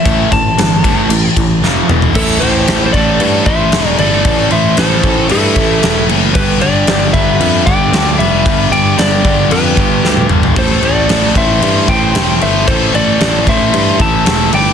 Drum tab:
CC |----------------|x-x-x-x-x-x-x-x-|x-x-x-x-x-x-x-x-|x-x-x-x-x-x-x-x-|
RD |x-x-x-x-x-x-----|----------------|----------------|----------------|
SD |----o-------o---|----o-------o---|----o-------o---|----o-------o---|
T1 |----------------|----------------|----------------|----------------|
T2 |--------------o-|----------------|----------------|----------------|
FT |---------------o|----------------|----------------|----------------|
BD |o-o---o---o-----|o-----o---o-----|o-----o---o-----|o-----o---o-----|

CC |x-x-x-x-x-x-----|x-x-x-x-x-x-x-x-|x-x-x-x-x-x-x-x-|
RD |----------------|----------------|----------------|
SD |----o-------o---|----o-------o---|----o-------o---|
T1 |-------------o--|----------------|----------------|
T2 |--------------o-|----------------|----------------|
FT |---------------o|----------------|----------------|
BD |o-----o---o-----|o-----o---o-----|o-----o---o-----|